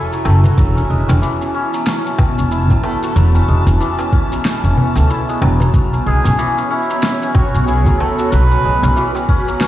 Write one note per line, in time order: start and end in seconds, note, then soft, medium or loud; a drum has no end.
0.00 0.63 E3 loud
0.00 0.11 F#3 medium
0.00 0.63 G#3 medium
0.00 0.76 C#4 medium
0.00 2.51 E4 medium
0.00 5.70 E4 medium
0.00 0.44 F#4 medium
0.00 0.21 A4 loud
0.00 0.54 G#5 medium
0.12 0.56 F#3 medium
0.12 shaker soft
0.25 0.48 F#1 medium
0.25 0.96 A3 loud
0.25 darbuka tek medium
0.44 3.02 F#4 medium
0.44 darbuka dum loud
0.44 shaker medium
0.57 0.80 E1 loud
0.57 1.72 F#3 medium
0.57 5.70 B3 medium
0.57 5.70 A5 medium
0.57 kick loud
0.57 shaker medium
0.76 1.08 C#4 medium
0.76 shaker soft
0.90 1.02 E1 medium
0.90 3.47 G#3 medium
1.08 1.18 E1 loud
1.08 1.41 C#4 medium
1.08 darbuka ka soft
1.08 darbuka tek medium
1.08 shaker medium
1.22 3.79 E3 medium
1.22 shaker medium
1.41 1.54 C#4 medium
1.41 shaker soft
1.54 1.86 C#4 loud
1.74 2.69 F#3 medium
1.74 shaker medium
1.87 2.05 C#4 medium
1.87 snare medium
1.87 shaker medium
2.06 2.19 C#4 medium
2.06 shaker soft
2.18 2.37 C#4 medium
2.18 kick loud
2.18 darbuka tek medium
2.18 darbuka dum medium
2.38 2.70 E1 medium
2.38 3.34 C#4 medium
2.38 shaker medium
2.51 5.09 E4 medium
2.51 shaker medium
2.70 2.79 A1 medium
2.70 3.15 F#3 medium
2.70 kick medium
2.70 darbuka ka medium
2.70 shaker soft
2.83 3.54 A3 loud
2.83 darbuka tek medium
3.02 6.28 F#4 medium
3.02 darbuka ka soft
3.02 shaker medium
3.16 3.39 E1 loud
3.16 4.31 F#3 medium
3.16 shaker medium
3.35 3.67 C#4 medium
3.35 darbuka ka soft
3.35 shaker soft
3.48 3.60 E1 medium
3.48 5.27 G#3 medium
3.67 3.75 E1 loud
3.67 3.99 C#4 medium
3.67 darbuka ka soft
3.67 shaker medium
3.81 5.79 E3 loud
3.81 shaker medium
3.99 4.12 C#4 medium
3.99 darbuka tek medium
3.99 shaker soft
4.13 4.45 C#4 medium
4.13 kick loud
4.32 5.41 F#3 medium
4.32 shaker medium
4.45 4.64 C#4 medium
4.45 snare medium
4.45 shaker medium
4.64 4.72 E1 medium
4.64 4.77 C#4 medium
4.64 shaker soft
4.77 5.93 C#4 medium
4.77 darbuka dum medium
4.96 5.05 D2 medium
4.96 5.35 A3 medium
4.96 darbuka tek medium
4.96 shaker medium
5.10 7.67 E4 medium
5.10 shaker medium
5.29 5.79 G#3 medium
5.29 shaker soft
5.42 5.64 E1 medium
5.42 5.60 F#3 medium
5.42 darbuka tek medium
5.60 5.73 F#3 medium
5.60 darbuka dum loud
5.60 shaker medium
5.74 5.97 B1 medium
5.74 6.89 F#3 medium
5.74 9.68 B3 medium
5.74 9.68 F#4 medium
5.74 8.30 C#5 medium
5.74 kick loud
5.74 shaker medium
5.93 6.25 C#4 medium
5.93 shaker soft
6.06 6.18 B1 medium
6.06 8.63 G#3 medium
6.06 6.66 G#4 medium
6.24 6.34 B1 medium
6.24 6.57 C#4 medium
6.24 darbuka ka soft
6.24 darbuka tek medium
6.24 shaker medium
6.38 8.95 E3 loud
6.38 shaker medium
6.57 6.70 C#4 medium
6.57 shaker soft
6.70 7.03 C#4 loud
6.70 7.31 E4 loud
6.90 7.86 F#3 medium
6.90 shaker medium
7.03 7.22 C#4 medium
7.03 snare medium
7.03 shaker medium
7.22 7.35 C#4 medium
7.22 shaker soft
7.34 7.54 C#4 medium
7.34 7.68 F#4 medium
7.34 kick loud
7.34 darbuka tek medium
7.34 darbuka dum medium
7.54 7.87 B1 medium
7.54 8.51 C#4 medium
7.54 shaker medium
7.66 9.68 E4 medium
7.66 8.00 G#4 medium
7.66 shaker medium
7.86 7.95 D2 medium
7.86 8.31 F#3 medium
7.86 kick medium
7.86 darbuka ka medium
7.86 shaker soft
7.99 8.70 A3 medium
7.99 8.33 A4 medium
7.99 darbuka tek medium
8.18 9.68 F#4 medium
8.18 darbuka ka soft
8.18 shaker medium
8.32 8.55 B1 medium
8.32 9.47 F#3 medium
8.32 9.29 B4 loud
8.32 9.68 B4 medium
8.32 shaker medium
8.50 8.83 C#4 medium
8.50 darbuka ka soft
8.50 shaker soft
8.64 8.76 B1 medium
8.64 9.68 G#3 medium
8.83 8.92 B1 loud
8.83 9.15 C#4 medium
8.83 darbuka ka medium
8.83 shaker medium
8.96 9.68 E3 loud
8.96 shaker medium
9.15 9.28 C#4 medium
9.15 darbuka tek soft
9.15 shaker soft
9.29 9.61 C#4 loud
9.29 kick medium
9.48 9.68 F#3 medium
9.48 shaker medium
9.61 9.68 C#4 medium
9.61 snare medium
9.61 shaker medium